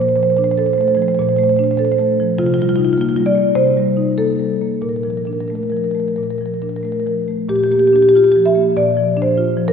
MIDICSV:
0, 0, Header, 1, 2, 480
1, 0, Start_track
1, 0, Key_signature, -2, "major"
1, 0, Tempo, 601805
1, 1886, Time_signature, 4, 2, 24, 8
1, 2832, Tempo, 640342
1, 3792, Tempo, 667408
1, 5712, Tempo, 621118
1, 7433, End_track
2, 0, Start_track
2, 0, Title_t, "Marimba"
2, 0, Program_c, 0, 12
2, 0, Note_on_c, 0, 46, 53
2, 12, Note_on_c, 0, 72, 51
2, 68, Note_off_c, 0, 72, 0
2, 68, Note_on_c, 0, 72, 57
2, 125, Note_off_c, 0, 72, 0
2, 125, Note_on_c, 0, 72, 50
2, 134, Note_on_c, 0, 53, 39
2, 183, Note_off_c, 0, 72, 0
2, 183, Note_on_c, 0, 72, 59
2, 240, Note_off_c, 0, 72, 0
2, 240, Note_on_c, 0, 72, 50
2, 293, Note_off_c, 0, 72, 0
2, 293, Note_on_c, 0, 72, 55
2, 305, Note_on_c, 0, 62, 48
2, 351, Note_off_c, 0, 72, 0
2, 351, Note_on_c, 0, 72, 55
2, 386, Note_off_c, 0, 53, 0
2, 410, Note_off_c, 0, 72, 0
2, 410, Note_on_c, 0, 72, 54
2, 459, Note_on_c, 0, 69, 51
2, 469, Note_off_c, 0, 72, 0
2, 469, Note_on_c, 0, 72, 53
2, 529, Note_off_c, 0, 72, 0
2, 529, Note_on_c, 0, 72, 54
2, 553, Note_off_c, 0, 62, 0
2, 585, Note_off_c, 0, 72, 0
2, 585, Note_on_c, 0, 72, 55
2, 622, Note_on_c, 0, 57, 44
2, 645, Note_off_c, 0, 72, 0
2, 645, Note_on_c, 0, 72, 57
2, 702, Note_off_c, 0, 72, 0
2, 702, Note_on_c, 0, 72, 56
2, 710, Note_off_c, 0, 69, 0
2, 756, Note_off_c, 0, 72, 0
2, 756, Note_on_c, 0, 72, 59
2, 775, Note_on_c, 0, 53, 43
2, 814, Note_off_c, 0, 72, 0
2, 814, Note_on_c, 0, 72, 50
2, 863, Note_off_c, 0, 72, 0
2, 863, Note_on_c, 0, 72, 59
2, 871, Note_off_c, 0, 57, 0
2, 902, Note_off_c, 0, 46, 0
2, 915, Note_off_c, 0, 72, 0
2, 915, Note_on_c, 0, 72, 53
2, 950, Note_on_c, 0, 46, 61
2, 970, Note_off_c, 0, 72, 0
2, 970, Note_on_c, 0, 72, 54
2, 1027, Note_off_c, 0, 53, 0
2, 1028, Note_off_c, 0, 72, 0
2, 1028, Note_on_c, 0, 72, 51
2, 1089, Note_off_c, 0, 72, 0
2, 1089, Note_on_c, 0, 72, 54
2, 1106, Note_on_c, 0, 57, 45
2, 1145, Note_off_c, 0, 72, 0
2, 1145, Note_on_c, 0, 72, 52
2, 1192, Note_off_c, 0, 72, 0
2, 1192, Note_on_c, 0, 72, 56
2, 1249, Note_off_c, 0, 72, 0
2, 1249, Note_on_c, 0, 72, 50
2, 1268, Note_on_c, 0, 62, 53
2, 1306, Note_off_c, 0, 72, 0
2, 1306, Note_on_c, 0, 72, 55
2, 1355, Note_off_c, 0, 57, 0
2, 1365, Note_off_c, 0, 72, 0
2, 1365, Note_on_c, 0, 72, 55
2, 1414, Note_off_c, 0, 72, 0
2, 1414, Note_on_c, 0, 72, 58
2, 1427, Note_on_c, 0, 69, 51
2, 1474, Note_off_c, 0, 72, 0
2, 1474, Note_on_c, 0, 72, 54
2, 1517, Note_off_c, 0, 62, 0
2, 1530, Note_off_c, 0, 72, 0
2, 1530, Note_on_c, 0, 72, 58
2, 1586, Note_on_c, 0, 57, 44
2, 1590, Note_off_c, 0, 72, 0
2, 1590, Note_on_c, 0, 72, 54
2, 1625, Note_off_c, 0, 72, 0
2, 1675, Note_off_c, 0, 69, 0
2, 1755, Note_on_c, 0, 53, 47
2, 1831, Note_off_c, 0, 57, 0
2, 1869, Note_off_c, 0, 46, 0
2, 1899, Note_off_c, 0, 53, 0
2, 1901, Note_on_c, 0, 48, 60
2, 1902, Note_on_c, 0, 65, 83
2, 1966, Note_off_c, 0, 65, 0
2, 1966, Note_on_c, 0, 65, 62
2, 2026, Note_off_c, 0, 65, 0
2, 2026, Note_on_c, 0, 65, 70
2, 2067, Note_on_c, 0, 55, 42
2, 2088, Note_off_c, 0, 65, 0
2, 2088, Note_on_c, 0, 65, 68
2, 2146, Note_off_c, 0, 65, 0
2, 2146, Note_on_c, 0, 65, 70
2, 2198, Note_off_c, 0, 65, 0
2, 2198, Note_on_c, 0, 65, 70
2, 2212, Note_on_c, 0, 63, 45
2, 2269, Note_off_c, 0, 65, 0
2, 2269, Note_on_c, 0, 65, 73
2, 2304, Note_off_c, 0, 55, 0
2, 2337, Note_off_c, 0, 65, 0
2, 2337, Note_on_c, 0, 65, 64
2, 2374, Note_on_c, 0, 58, 53
2, 2402, Note_off_c, 0, 65, 0
2, 2402, Note_on_c, 0, 65, 74
2, 2456, Note_off_c, 0, 63, 0
2, 2464, Note_off_c, 0, 65, 0
2, 2464, Note_on_c, 0, 65, 65
2, 2524, Note_off_c, 0, 65, 0
2, 2524, Note_on_c, 0, 65, 71
2, 2529, Note_on_c, 0, 55, 48
2, 2571, Note_off_c, 0, 65, 0
2, 2601, Note_on_c, 0, 74, 77
2, 2617, Note_off_c, 0, 58, 0
2, 2674, Note_on_c, 0, 58, 42
2, 2776, Note_off_c, 0, 55, 0
2, 2812, Note_off_c, 0, 48, 0
2, 2828, Note_off_c, 0, 74, 0
2, 2835, Note_on_c, 0, 72, 83
2, 2836, Note_on_c, 0, 48, 54
2, 2926, Note_off_c, 0, 58, 0
2, 2997, Note_on_c, 0, 55, 42
2, 3144, Note_on_c, 0, 63, 44
2, 3245, Note_off_c, 0, 55, 0
2, 3287, Note_off_c, 0, 72, 0
2, 3302, Note_on_c, 0, 69, 71
2, 3305, Note_on_c, 0, 58, 45
2, 3400, Note_off_c, 0, 63, 0
2, 3462, Note_on_c, 0, 55, 36
2, 3563, Note_off_c, 0, 58, 0
2, 3630, Note_on_c, 0, 58, 35
2, 3725, Note_off_c, 0, 55, 0
2, 3765, Note_off_c, 0, 48, 0
2, 3771, Note_off_c, 0, 69, 0
2, 3780, Note_on_c, 0, 46, 42
2, 3783, Note_on_c, 0, 70, 50
2, 3793, Note_off_c, 0, 58, 0
2, 3835, Note_off_c, 0, 70, 0
2, 3835, Note_on_c, 0, 70, 41
2, 3887, Note_off_c, 0, 70, 0
2, 3887, Note_on_c, 0, 70, 41
2, 3938, Note_off_c, 0, 70, 0
2, 3938, Note_on_c, 0, 70, 41
2, 3949, Note_on_c, 0, 53, 29
2, 3987, Note_off_c, 0, 70, 0
2, 3987, Note_on_c, 0, 70, 44
2, 4038, Note_off_c, 0, 70, 0
2, 4038, Note_on_c, 0, 70, 39
2, 4094, Note_off_c, 0, 70, 0
2, 4094, Note_on_c, 0, 70, 41
2, 4108, Note_on_c, 0, 62, 35
2, 4149, Note_off_c, 0, 70, 0
2, 4149, Note_on_c, 0, 70, 38
2, 4204, Note_off_c, 0, 70, 0
2, 4204, Note_on_c, 0, 70, 44
2, 4206, Note_off_c, 0, 53, 0
2, 4258, Note_off_c, 0, 70, 0
2, 4258, Note_on_c, 0, 70, 42
2, 4274, Note_on_c, 0, 57, 36
2, 4311, Note_off_c, 0, 70, 0
2, 4311, Note_on_c, 0, 70, 45
2, 4367, Note_off_c, 0, 62, 0
2, 4367, Note_off_c, 0, 70, 0
2, 4367, Note_on_c, 0, 70, 38
2, 4416, Note_off_c, 0, 70, 0
2, 4416, Note_on_c, 0, 70, 44
2, 4432, Note_on_c, 0, 53, 34
2, 4465, Note_off_c, 0, 70, 0
2, 4465, Note_on_c, 0, 70, 41
2, 4519, Note_off_c, 0, 70, 0
2, 4519, Note_on_c, 0, 70, 43
2, 4533, Note_off_c, 0, 57, 0
2, 4570, Note_off_c, 0, 70, 0
2, 4570, Note_on_c, 0, 70, 40
2, 4595, Note_on_c, 0, 57, 31
2, 4632, Note_off_c, 0, 70, 0
2, 4632, Note_on_c, 0, 70, 41
2, 4692, Note_off_c, 0, 70, 0
2, 4692, Note_on_c, 0, 70, 42
2, 4694, Note_off_c, 0, 53, 0
2, 4725, Note_off_c, 0, 46, 0
2, 4748, Note_off_c, 0, 70, 0
2, 4748, Note_on_c, 0, 70, 44
2, 4762, Note_on_c, 0, 46, 38
2, 4799, Note_off_c, 0, 70, 0
2, 4799, Note_on_c, 0, 70, 39
2, 4851, Note_off_c, 0, 70, 0
2, 4851, Note_on_c, 0, 70, 45
2, 4855, Note_off_c, 0, 57, 0
2, 4907, Note_off_c, 0, 70, 0
2, 4907, Note_on_c, 0, 70, 38
2, 4926, Note_on_c, 0, 53, 29
2, 4961, Note_off_c, 0, 70, 0
2, 4961, Note_on_c, 0, 70, 43
2, 5019, Note_off_c, 0, 70, 0
2, 5019, Note_on_c, 0, 70, 39
2, 5078, Note_off_c, 0, 70, 0
2, 5078, Note_on_c, 0, 62, 30
2, 5078, Note_on_c, 0, 70, 43
2, 5131, Note_off_c, 0, 70, 0
2, 5131, Note_on_c, 0, 70, 42
2, 5177, Note_off_c, 0, 53, 0
2, 5181, Note_off_c, 0, 70, 0
2, 5181, Note_on_c, 0, 70, 43
2, 5229, Note_on_c, 0, 57, 34
2, 5244, Note_off_c, 0, 70, 0
2, 5244, Note_on_c, 0, 70, 41
2, 5297, Note_off_c, 0, 70, 0
2, 5297, Note_on_c, 0, 70, 42
2, 5331, Note_off_c, 0, 62, 0
2, 5350, Note_off_c, 0, 70, 0
2, 5350, Note_on_c, 0, 70, 39
2, 5397, Note_on_c, 0, 53, 31
2, 5402, Note_off_c, 0, 70, 0
2, 5402, Note_on_c, 0, 70, 46
2, 5442, Note_off_c, 0, 70, 0
2, 5487, Note_off_c, 0, 57, 0
2, 5552, Note_on_c, 0, 57, 36
2, 5650, Note_off_c, 0, 53, 0
2, 5684, Note_off_c, 0, 46, 0
2, 5703, Note_on_c, 0, 46, 55
2, 5706, Note_on_c, 0, 67, 71
2, 5710, Note_off_c, 0, 57, 0
2, 5755, Note_off_c, 0, 67, 0
2, 5755, Note_on_c, 0, 67, 55
2, 5817, Note_off_c, 0, 67, 0
2, 5817, Note_on_c, 0, 67, 62
2, 5876, Note_on_c, 0, 58, 40
2, 5880, Note_off_c, 0, 67, 0
2, 5880, Note_on_c, 0, 67, 58
2, 5940, Note_off_c, 0, 67, 0
2, 5940, Note_on_c, 0, 67, 62
2, 6001, Note_off_c, 0, 67, 0
2, 6001, Note_on_c, 0, 67, 59
2, 6042, Note_on_c, 0, 62, 44
2, 6065, Note_off_c, 0, 67, 0
2, 6065, Note_on_c, 0, 67, 61
2, 6116, Note_off_c, 0, 67, 0
2, 6116, Note_on_c, 0, 67, 59
2, 6141, Note_off_c, 0, 58, 0
2, 6166, Note_off_c, 0, 67, 0
2, 6166, Note_on_c, 0, 67, 64
2, 6217, Note_on_c, 0, 65, 54
2, 6227, Note_off_c, 0, 67, 0
2, 6227, Note_on_c, 0, 67, 58
2, 6284, Note_off_c, 0, 67, 0
2, 6284, Note_on_c, 0, 67, 63
2, 6304, Note_off_c, 0, 62, 0
2, 6344, Note_off_c, 0, 67, 0
2, 6344, Note_on_c, 0, 67, 60
2, 6376, Note_on_c, 0, 53, 43
2, 6417, Note_off_c, 0, 67, 0
2, 6450, Note_on_c, 0, 76, 75
2, 6470, Note_off_c, 0, 65, 0
2, 6522, Note_on_c, 0, 58, 43
2, 6627, Note_off_c, 0, 53, 0
2, 6653, Note_off_c, 0, 46, 0
2, 6678, Note_off_c, 0, 76, 0
2, 6690, Note_on_c, 0, 46, 60
2, 6691, Note_on_c, 0, 74, 80
2, 6778, Note_off_c, 0, 58, 0
2, 6845, Note_on_c, 0, 53, 46
2, 7000, Note_on_c, 0, 62, 55
2, 7028, Note_off_c, 0, 74, 0
2, 7040, Note_on_c, 0, 72, 74
2, 7095, Note_off_c, 0, 53, 0
2, 7161, Note_on_c, 0, 65, 54
2, 7251, Note_off_c, 0, 62, 0
2, 7313, Note_on_c, 0, 53, 51
2, 7378, Note_off_c, 0, 72, 0
2, 7397, Note_on_c, 0, 70, 92
2, 7410, Note_off_c, 0, 65, 0
2, 7433, Note_off_c, 0, 46, 0
2, 7433, Note_off_c, 0, 53, 0
2, 7433, Note_off_c, 0, 70, 0
2, 7433, End_track
0, 0, End_of_file